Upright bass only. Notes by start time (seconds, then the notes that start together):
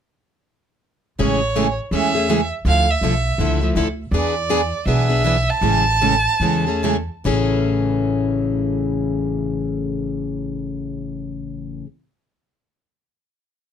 1.19 A1
1.91 E2
2.65 D2
3.01 B1
3.38 C#2
3.75 D2
4.11 E2
4.86 B1
5.61 A1
6.40 E2
7.25 A1